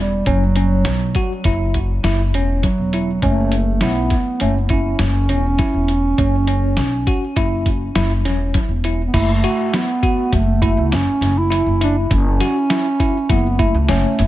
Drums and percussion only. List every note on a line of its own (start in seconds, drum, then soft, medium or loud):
0.26 kick medium
0.26 closed hi-hat medium
0.56 closed hi-hat soft
0.85 snare medium
0.85 closed hi-hat medium
1.15 kick medium
1.15 closed hi-hat medium
1.44 kick medium
1.44 closed hi-hat medium
1.74 kick medium
1.74 closed hi-hat soft
2.04 snare medium
2.04 closed hi-hat medium
2.34 closed hi-hat medium
2.63 kick medium
2.63 closed hi-hat medium
2.93 closed hi-hat soft
3.22 kick medium
3.22 closed hi-hat medium
3.52 closed hi-hat medium
3.81 snare medium
3.81 closed hi-hat medium
4.10 kick medium
4.10 snare soft
4.10 closed hi-hat soft
4.40 closed hi-hat medium
4.69 kick medium
4.69 closed hi-hat soft
4.99 snare medium
4.99 closed hi-hat medium
5.29 closed hi-hat soft
5.59 kick medium
5.59 snare soft
5.59 closed hi-hat medium
5.88 closed hi-hat soft
6.18 kick medium
6.18 closed hi-hat medium
6.47 closed hi-hat medium
6.77 snare medium
6.77 closed hi-hat medium
7.07 kick medium
7.07 closed hi-hat medium
7.36 kick medium
7.36 closed hi-hat medium
7.66 kick medium
7.66 closed hi-hat medium
7.96 snare medium
7.96 closed hi-hat medium
8.25 snare soft
8.25 closed hi-hat soft
8.54 kick medium
8.54 closed hi-hat medium
8.84 closed hi-hat medium
9.14 kick medium
9.14 closed hi-hat medium
9.14 crash medium
9.44 closed hi-hat medium
9.74 snare medium
9.74 closed hi-hat medium
10.03 kick medium
10.03 closed hi-hat soft
10.32 kick loud
10.32 closed hi-hat medium
10.62 kick medium
10.62 closed hi-hat medium
10.92 snare medium
10.92 closed hi-hat medium
11.22 snare soft
11.22 closed hi-hat medium
11.52 closed hi-hat medium
11.81 closed hi-hat medium
12.11 kick loud
12.11 closed hi-hat medium
12.40 snare soft
12.40 closed hi-hat medium
12.70 snare medium
12.70 closed hi-hat medium
13.00 kick medium
13.00 closed hi-hat medium
13.29 kick loud
13.29 closed hi-hat medium
13.59 kick medium
13.59 closed hi-hat medium
13.89 snare medium
13.89 closed hi-hat medium
14.19 closed hi-hat medium